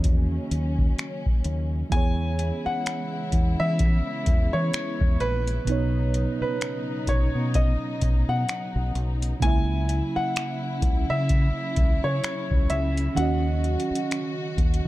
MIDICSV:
0, 0, Header, 1, 7, 480
1, 0, Start_track
1, 0, Tempo, 937500
1, 985, Time_signature, 4, 2, 24, 8
1, 7618, End_track
2, 0, Start_track
2, 0, Title_t, "Grand piano"
2, 0, Program_c, 0, 0
2, 983, Note_on_c, 0, 80, 110
2, 1362, Note_on_c, 0, 78, 98
2, 1374, Note_off_c, 0, 80, 0
2, 1842, Note_on_c, 0, 76, 107
2, 1857, Note_off_c, 0, 78, 0
2, 2320, Note_on_c, 0, 73, 98
2, 2337, Note_off_c, 0, 76, 0
2, 2665, Note_on_c, 0, 71, 103
2, 2673, Note_off_c, 0, 73, 0
2, 3279, Note_off_c, 0, 71, 0
2, 3287, Note_on_c, 0, 71, 85
2, 3629, Note_on_c, 0, 73, 83
2, 3636, Note_off_c, 0, 71, 0
2, 3867, Note_on_c, 0, 75, 83
2, 3874, Note_off_c, 0, 73, 0
2, 4245, Note_on_c, 0, 78, 92
2, 4256, Note_off_c, 0, 75, 0
2, 4564, Note_off_c, 0, 78, 0
2, 4825, Note_on_c, 0, 80, 107
2, 5203, Note_on_c, 0, 78, 101
2, 5215, Note_off_c, 0, 80, 0
2, 5683, Note_on_c, 0, 76, 101
2, 5697, Note_off_c, 0, 78, 0
2, 6143, Note_off_c, 0, 76, 0
2, 6164, Note_on_c, 0, 73, 95
2, 6502, Note_on_c, 0, 76, 87
2, 6515, Note_off_c, 0, 73, 0
2, 6740, Note_on_c, 0, 78, 94
2, 6750, Note_off_c, 0, 76, 0
2, 7618, Note_off_c, 0, 78, 0
2, 7618, End_track
3, 0, Start_track
3, 0, Title_t, "FM electric piano"
3, 0, Program_c, 1, 5
3, 0, Control_c, 1, 64, 127
3, 0, Note_on_c, 1, 51, 75
3, 0, Note_on_c, 1, 58, 67
3, 0, Note_on_c, 1, 66, 66
3, 0, Note_on_c, 1, 73, 77
3, 958, Note_off_c, 1, 51, 0
3, 964, Note_off_c, 1, 58, 0
3, 970, Note_off_c, 1, 66, 0
3, 972, Note_on_c, 1, 52, 64
3, 976, Note_off_c, 1, 73, 0
3, 983, Note_on_c, 1, 59, 62
3, 992, Control_c, 1, 64, 0
3, 995, Note_on_c, 1, 68, 58
3, 1007, Note_on_c, 1, 73, 70
3, 1088, Control_c, 1, 64, 127
3, 2878, Note_off_c, 1, 52, 0
3, 2883, Note_off_c, 1, 59, 0
3, 2889, Note_off_c, 1, 68, 0
3, 2892, Note_on_c, 1, 47, 64
3, 2895, Note_off_c, 1, 73, 0
3, 2903, Note_on_c, 1, 59, 58
3, 2911, Control_c, 1, 64, 0
3, 2915, Note_on_c, 1, 63, 61
3, 2926, Note_on_c, 1, 73, 71
3, 2992, Control_c, 1, 64, 127
3, 4798, Note_off_c, 1, 47, 0
3, 4803, Note_off_c, 1, 59, 0
3, 4809, Note_off_c, 1, 63, 0
3, 4813, Note_on_c, 1, 49, 66
3, 4815, Note_off_c, 1, 73, 0
3, 4825, Note_on_c, 1, 58, 58
3, 4831, Control_c, 1, 64, 0
3, 4836, Note_on_c, 1, 64, 59
3, 4847, Note_on_c, 1, 76, 69
3, 4934, Control_c, 1, 64, 127
3, 6718, Note_off_c, 1, 49, 0
3, 6724, Note_off_c, 1, 58, 0
3, 6730, Note_off_c, 1, 64, 0
3, 6733, Note_on_c, 1, 51, 69
3, 6735, Note_off_c, 1, 76, 0
3, 6744, Note_on_c, 1, 61, 62
3, 6751, Control_c, 1, 64, 0
3, 6755, Note_on_c, 1, 66, 59
3, 6768, Note_on_c, 1, 75, 74
3, 6846, Control_c, 1, 64, 127
3, 7618, Note_off_c, 1, 51, 0
3, 7618, Note_off_c, 1, 61, 0
3, 7618, Note_off_c, 1, 66, 0
3, 7618, Note_off_c, 1, 75, 0
3, 7618, End_track
4, 0, Start_track
4, 0, Title_t, "String section"
4, 0, Program_c, 2, 48
4, 0, Note_on_c, 2, 49, 72
4, 0, Note_on_c, 2, 54, 63
4, 0, Note_on_c, 2, 58, 67
4, 26, Note_on_c, 2, 61, 83
4, 964, Note_off_c, 2, 49, 0
4, 965, Note_off_c, 2, 54, 0
4, 965, Note_off_c, 2, 58, 0
4, 976, Note_off_c, 2, 61, 0
4, 980, Note_on_c, 2, 56, 66
4, 981, Note_on_c, 2, 49, 73
4, 981, Note_on_c, 2, 59, 69
4, 981, Note_on_c, 2, 64, 78
4, 2883, Note_off_c, 2, 49, 0
4, 2883, Note_off_c, 2, 56, 0
4, 2883, Note_off_c, 2, 64, 0
4, 2902, Note_on_c, 2, 49, 69
4, 2902, Note_on_c, 2, 54, 66
4, 2904, Note_on_c, 2, 63, 81
4, 4802, Note_off_c, 2, 59, 0
4, 4804, Note_off_c, 2, 49, 0
4, 4805, Note_off_c, 2, 63, 0
4, 4822, Note_on_c, 2, 61, 68
4, 4823, Note_on_c, 2, 49, 73
4, 4823, Note_on_c, 2, 64, 82
4, 6724, Note_off_c, 2, 64, 0
4, 6743, Note_on_c, 2, 66, 78
4, 7618, Note_off_c, 2, 49, 0
4, 7618, Note_off_c, 2, 54, 0
4, 7618, Note_off_c, 2, 61, 0
4, 7618, Note_off_c, 2, 66, 0
4, 7618, End_track
5, 0, Start_track
5, 0, Title_t, "Fingered electric bass"
5, 0, Program_c, 3, 33
5, 0, Note_on_c, 3, 40, 79
5, 192, Note_off_c, 3, 40, 0
5, 263, Note_on_c, 3, 39, 86
5, 453, Note_off_c, 3, 39, 0
5, 744, Note_on_c, 3, 39, 86
5, 933, Note_off_c, 3, 39, 0
5, 983, Note_on_c, 3, 40, 93
5, 1282, Note_off_c, 3, 40, 0
5, 1702, Note_on_c, 3, 40, 83
5, 1813, Note_off_c, 3, 40, 0
5, 1844, Note_on_c, 3, 52, 97
5, 2033, Note_off_c, 3, 52, 0
5, 2186, Note_on_c, 3, 40, 84
5, 2295, Note_off_c, 3, 40, 0
5, 2324, Note_on_c, 3, 52, 89
5, 2403, Note_off_c, 3, 52, 0
5, 2565, Note_on_c, 3, 40, 92
5, 2644, Note_off_c, 3, 40, 0
5, 2664, Note_on_c, 3, 34, 82
5, 2854, Note_off_c, 3, 34, 0
5, 2903, Note_on_c, 3, 35, 105
5, 3202, Note_off_c, 3, 35, 0
5, 3623, Note_on_c, 3, 35, 89
5, 3733, Note_off_c, 3, 35, 0
5, 3764, Note_on_c, 3, 47, 102
5, 3953, Note_off_c, 3, 47, 0
5, 4106, Note_on_c, 3, 35, 85
5, 4215, Note_off_c, 3, 35, 0
5, 4242, Note_on_c, 3, 47, 93
5, 4322, Note_off_c, 3, 47, 0
5, 4483, Note_on_c, 3, 35, 94
5, 4563, Note_off_c, 3, 35, 0
5, 4584, Note_on_c, 3, 35, 90
5, 4773, Note_off_c, 3, 35, 0
5, 4824, Note_on_c, 3, 37, 101
5, 5123, Note_off_c, 3, 37, 0
5, 5541, Note_on_c, 3, 37, 92
5, 5652, Note_off_c, 3, 37, 0
5, 5685, Note_on_c, 3, 49, 98
5, 5873, Note_off_c, 3, 49, 0
5, 6026, Note_on_c, 3, 37, 94
5, 6135, Note_off_c, 3, 37, 0
5, 6164, Note_on_c, 3, 49, 98
5, 6243, Note_off_c, 3, 49, 0
5, 6406, Note_on_c, 3, 37, 84
5, 6485, Note_off_c, 3, 37, 0
5, 6503, Note_on_c, 3, 37, 94
5, 6693, Note_off_c, 3, 37, 0
5, 6743, Note_on_c, 3, 39, 95
5, 7043, Note_off_c, 3, 39, 0
5, 7463, Note_on_c, 3, 39, 92
5, 7573, Note_off_c, 3, 39, 0
5, 7618, End_track
6, 0, Start_track
6, 0, Title_t, "Muted fingered electric bass strokes"
6, 1364, Note_on_c, 9, 29, 48
6, 1415, Note_off_c, 9, 29, 0
6, 3283, Note_on_c, 9, 29, 46
6, 3334, Note_off_c, 9, 29, 0
6, 5204, Note_on_c, 9, 29, 49
6, 5256, Note_off_c, 9, 29, 0
6, 7121, Note_on_c, 9, 29, 48
6, 7173, Note_off_c, 9, 29, 0
6, 7618, End_track
7, 0, Start_track
7, 0, Title_t, "Drums"
7, 20, Note_on_c, 9, 42, 66
7, 25, Note_on_c, 9, 36, 90
7, 71, Note_off_c, 9, 42, 0
7, 76, Note_off_c, 9, 36, 0
7, 263, Note_on_c, 9, 42, 64
7, 314, Note_off_c, 9, 42, 0
7, 402, Note_on_c, 9, 36, 81
7, 453, Note_off_c, 9, 36, 0
7, 504, Note_on_c, 9, 42, 58
7, 508, Note_on_c, 9, 26, 107
7, 555, Note_off_c, 9, 42, 0
7, 560, Note_off_c, 9, 26, 0
7, 646, Note_on_c, 9, 36, 84
7, 697, Note_off_c, 9, 36, 0
7, 740, Note_on_c, 9, 42, 64
7, 791, Note_off_c, 9, 42, 0
7, 982, Note_on_c, 9, 42, 67
7, 984, Note_on_c, 9, 36, 112
7, 1034, Note_off_c, 9, 42, 0
7, 1035, Note_off_c, 9, 36, 0
7, 1223, Note_on_c, 9, 42, 61
7, 1274, Note_off_c, 9, 42, 0
7, 1465, Note_on_c, 9, 42, 67
7, 1470, Note_on_c, 9, 26, 101
7, 1516, Note_off_c, 9, 42, 0
7, 1521, Note_off_c, 9, 26, 0
7, 1701, Note_on_c, 9, 42, 68
7, 1702, Note_on_c, 9, 36, 82
7, 1752, Note_off_c, 9, 42, 0
7, 1753, Note_off_c, 9, 36, 0
7, 1941, Note_on_c, 9, 42, 68
7, 1945, Note_on_c, 9, 36, 91
7, 1993, Note_off_c, 9, 42, 0
7, 1997, Note_off_c, 9, 36, 0
7, 2182, Note_on_c, 9, 42, 61
7, 2186, Note_on_c, 9, 36, 86
7, 2233, Note_off_c, 9, 42, 0
7, 2237, Note_off_c, 9, 36, 0
7, 2424, Note_on_c, 9, 42, 62
7, 2428, Note_on_c, 9, 26, 105
7, 2475, Note_off_c, 9, 42, 0
7, 2479, Note_off_c, 9, 26, 0
7, 2566, Note_on_c, 9, 36, 87
7, 2617, Note_off_c, 9, 36, 0
7, 2664, Note_on_c, 9, 42, 39
7, 2715, Note_off_c, 9, 42, 0
7, 2803, Note_on_c, 9, 42, 67
7, 2854, Note_off_c, 9, 42, 0
7, 2905, Note_on_c, 9, 42, 70
7, 2956, Note_off_c, 9, 42, 0
7, 3144, Note_on_c, 9, 42, 62
7, 3195, Note_off_c, 9, 42, 0
7, 3385, Note_on_c, 9, 42, 66
7, 3390, Note_on_c, 9, 26, 102
7, 3437, Note_off_c, 9, 42, 0
7, 3441, Note_off_c, 9, 26, 0
7, 3622, Note_on_c, 9, 36, 84
7, 3622, Note_on_c, 9, 42, 68
7, 3673, Note_off_c, 9, 36, 0
7, 3673, Note_off_c, 9, 42, 0
7, 3862, Note_on_c, 9, 42, 68
7, 3865, Note_on_c, 9, 36, 94
7, 3913, Note_off_c, 9, 42, 0
7, 3917, Note_off_c, 9, 36, 0
7, 4104, Note_on_c, 9, 42, 64
7, 4106, Note_on_c, 9, 36, 85
7, 4155, Note_off_c, 9, 42, 0
7, 4157, Note_off_c, 9, 36, 0
7, 4345, Note_on_c, 9, 42, 59
7, 4349, Note_on_c, 9, 26, 100
7, 4396, Note_off_c, 9, 42, 0
7, 4400, Note_off_c, 9, 26, 0
7, 4584, Note_on_c, 9, 42, 40
7, 4635, Note_off_c, 9, 42, 0
7, 4723, Note_on_c, 9, 42, 71
7, 4774, Note_off_c, 9, 42, 0
7, 4824, Note_on_c, 9, 36, 113
7, 4824, Note_on_c, 9, 42, 71
7, 4875, Note_off_c, 9, 36, 0
7, 4875, Note_off_c, 9, 42, 0
7, 5064, Note_on_c, 9, 42, 64
7, 5115, Note_off_c, 9, 42, 0
7, 5305, Note_on_c, 9, 42, 70
7, 5309, Note_on_c, 9, 26, 100
7, 5356, Note_off_c, 9, 42, 0
7, 5361, Note_off_c, 9, 26, 0
7, 5541, Note_on_c, 9, 42, 68
7, 5542, Note_on_c, 9, 36, 80
7, 5593, Note_off_c, 9, 36, 0
7, 5593, Note_off_c, 9, 42, 0
7, 5782, Note_on_c, 9, 42, 69
7, 5786, Note_on_c, 9, 36, 92
7, 5833, Note_off_c, 9, 42, 0
7, 5837, Note_off_c, 9, 36, 0
7, 6023, Note_on_c, 9, 42, 63
7, 6026, Note_on_c, 9, 36, 86
7, 6074, Note_off_c, 9, 42, 0
7, 6077, Note_off_c, 9, 36, 0
7, 6265, Note_on_c, 9, 42, 58
7, 6269, Note_on_c, 9, 26, 104
7, 6316, Note_off_c, 9, 42, 0
7, 6320, Note_off_c, 9, 26, 0
7, 6406, Note_on_c, 9, 36, 88
7, 6457, Note_off_c, 9, 36, 0
7, 6501, Note_on_c, 9, 46, 71
7, 6504, Note_on_c, 9, 42, 40
7, 6552, Note_off_c, 9, 46, 0
7, 6555, Note_off_c, 9, 42, 0
7, 6643, Note_on_c, 9, 42, 66
7, 6694, Note_off_c, 9, 42, 0
7, 6745, Note_on_c, 9, 42, 73
7, 6796, Note_off_c, 9, 42, 0
7, 6984, Note_on_c, 9, 42, 39
7, 7035, Note_off_c, 9, 42, 0
7, 7064, Note_on_c, 9, 42, 51
7, 7115, Note_off_c, 9, 42, 0
7, 7145, Note_on_c, 9, 42, 69
7, 7196, Note_off_c, 9, 42, 0
7, 7226, Note_on_c, 9, 42, 68
7, 7230, Note_on_c, 9, 26, 106
7, 7277, Note_off_c, 9, 42, 0
7, 7282, Note_off_c, 9, 26, 0
7, 7463, Note_on_c, 9, 36, 82
7, 7466, Note_on_c, 9, 42, 44
7, 7514, Note_off_c, 9, 36, 0
7, 7517, Note_off_c, 9, 42, 0
7, 7545, Note_on_c, 9, 42, 47
7, 7597, Note_off_c, 9, 42, 0
7, 7618, End_track
0, 0, End_of_file